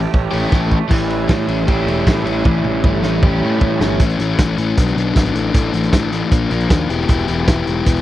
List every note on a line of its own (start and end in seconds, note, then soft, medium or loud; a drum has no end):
0.00 0.52 E3 medium
0.00 0.30 A3 medium
0.00 0.90 G4 medium
0.12 0.26 A1 loud
0.12 0.51 C#4 medium
0.12 kick loud
0.31 0.45 A1 medium
0.31 0.50 E3 medium
0.31 0.70 A3 medium
0.31 0.51 A3 medium
0.31 0.51 C#4 medium
0.31 0.51 G4 medium
0.31 open hi-hat medium
0.51 0.76 A1 medium
0.51 0.77 E3 medium
0.51 0.77 A3 medium
0.51 0.90 C#4 medium
0.51 0.77 C#4 medium
0.51 0.77 G4 medium
0.51 kick loud
0.51 snare medium
0.71 0.91 A3 medium
0.71 kick medium
0.89 1.25 A1 medium
0.89 2.05 E3 medium
0.89 1.66 G3 medium
0.89 1.68 C#4 medium
0.89 1.69 E4 loud
0.89 kick loud
0.89 crash loud
1.10 ride medium
1.28 1.46 A2 medium
1.28 1.87 A3 medium
1.28 kick loud
1.28 snare loud
1.28 ride loud
1.48 1.65 A1 medium
1.48 2.25 C#4 medium
1.48 ride medium
1.66 1.85 A1 medium
1.66 2.43 G3 medium
1.66 2.46 C#4 medium
1.66 2.48 E4 medium
1.66 2.65 G4 medium
1.66 kick loud
1.66 ride loud
1.87 2.04 E1 medium
1.87 2.83 A3 medium
1.87 ride medium
2.06 2.24 A2 loud
2.06 2.43 E3 medium
2.06 kick loud
2.06 snare loud
2.06 ride loud
2.24 2.42 A1 medium
2.24 3.02 C#4 medium
2.24 ride medium
2.45 2.62 A1 medium
2.45 3.42 E3 medium
2.45 3.21 G3 medium
2.45 3.22 C#4 medium
2.45 3.23 E4 medium
2.45 kick loud
2.45 high tom medium
2.64 2.81 A1 medium
2.64 high tom medium
2.84 3.01 G1 medium
2.84 3.43 A3 medium
2.84 kick loud
3.03 3.20 A1 medium
3.03 3.80 C#4 medium
3.03 snare medium
3.22 3.40 A1 loud
3.22 3.99 G3 medium
3.22 3.99 C#4 medium
3.22 4.00 E4 medium
3.22 4.00 G4 medium
3.22 kick loud
3.22 mid tom medium
3.41 3.59 A2 medium
3.41 4.00 A3 medium
3.61 3.78 A2 medium
3.61 4.00 E3 medium
3.61 kick loud
3.80 3.97 G1 medium
3.80 4.00 C#4 medium
3.80 snare loud
3.99 4.14 A1 medium
3.99 4.19 E3 loud
3.99 4.20 A3 loud
3.99 4.20 C#4 loud
3.99 kick loud
3.99 closed hi-hat loud
4.09 closed hi-hat medium
4.19 4.34 A1 medium
4.19 4.39 E3 medium
4.19 4.39 A3 medium
4.19 4.39 C#4 medium
4.19 closed hi-hat medium
4.38 4.53 A1 medium
4.38 4.57 E3 medium
4.38 4.57 A3 medium
4.38 4.57 C#4 loud
4.38 kick loud
4.38 snare loud
4.38 closed hi-hat loud
4.58 4.72 A1 medium
4.58 4.76 E3 medium
4.58 4.76 A3 loud
4.58 4.76 C#4 loud
4.58 closed hi-hat medium
4.78 4.92 B1 medium
4.78 4.96 F#3 loud
4.78 4.97 B3 loud
4.78 4.97 D4 loud
4.78 kick loud
4.78 closed hi-hat loud
4.87 closed hi-hat medium
4.96 5.11 B1 loud
4.96 5.14 F#3 medium
4.96 5.14 B3 medium
4.96 5.15 D4 medium
4.96 closed hi-hat medium
5.15 5.31 G#1 medium
5.15 5.34 F#3 loud
5.15 5.34 B3 loud
5.15 5.34 D4 loud
5.15 kick loud
5.15 snare loud
5.15 closed hi-hat loud
5.26 closed hi-hat medium
5.34 5.49 A1 medium
5.34 5.52 E3 loud
5.34 5.53 A3 loud
5.34 5.53 D4 loud
5.34 closed hi-hat medium
5.53 5.69 A1 loud
5.53 5.73 E3 medium
5.53 5.73 A3 loud
5.53 5.73 D4 loud
5.53 kick loud
5.53 closed hi-hat loud
5.74 5.88 A1 medium
5.74 5.91 E3 medium
5.74 5.92 A3 loud
5.74 5.92 D4 medium
5.74 closed hi-hat medium
5.83 closed hi-hat medium
5.92 6.22 A1 medium
5.92 6.10 E3 loud
5.92 6.11 A3 loud
5.92 6.11 D4 loud
5.92 kick loud
5.92 snare loud
5.92 closed hi-hat loud
6.11 6.30 E3 medium
6.11 6.31 A3 loud
6.11 6.30 D4 medium
6.11 closed hi-hat medium
6.31 6.46 A#1 medium
6.31 6.49 F3 loud
6.31 6.49 A#3 loud
6.31 6.50 D4 loud
6.31 kick loud
6.31 closed hi-hat loud
6.50 6.65 A#1 loud
6.50 6.67 F3 medium
6.50 6.68 A#3 loud
6.50 6.68 D4 medium
6.50 closed hi-hat medium
6.60 closed hi-hat soft
6.68 6.85 D#2 loud
6.68 6.88 F3 loud
6.68 6.88 A#3 loud
6.68 6.88 D4 loud
6.68 kick loud
6.68 snare loud
6.68 closed hi-hat loud
6.89 7.04 E1 medium
6.89 7.07 E3 medium
6.89 7.08 B3 loud
6.89 7.07 E4 loud
6.89 7.08 G4 loud
6.89 closed hi-hat medium
7.00 snare soft
7.08 7.24 E1 medium
7.08 7.26 E3 medium
7.08 7.27 B3 medium
7.08 7.26 E4 loud
7.08 7.27 G4 loud
7.08 kick loud
7.08 closed hi-hat loud
7.19 closed hi-hat soft
7.27 7.43 E1 medium
7.27 7.46 E3 medium
7.27 7.47 B3 medium
7.27 7.46 E4 loud
7.27 7.47 G4 medium
7.27 closed hi-hat medium
7.47 7.62 E1 loud
7.47 7.65 E3 medium
7.47 7.66 B3 medium
7.47 7.66 E4 loud
7.47 7.66 G4 loud
7.47 kick loud
7.47 snare loud
7.47 closed hi-hat loud
7.66 7.82 E1 loud
7.66 7.84 E3 medium
7.66 7.85 B3 loud
7.66 7.86 E4 loud
7.66 7.86 G4 loud
7.66 closed hi-hat medium
7.86 8.01 E1 loud
7.86 8.02 E3 loud
7.86 8.02 B3 loud
7.86 8.02 E4 loud
7.86 8.02 G4 medium
7.86 kick loud
7.86 closed hi-hat loud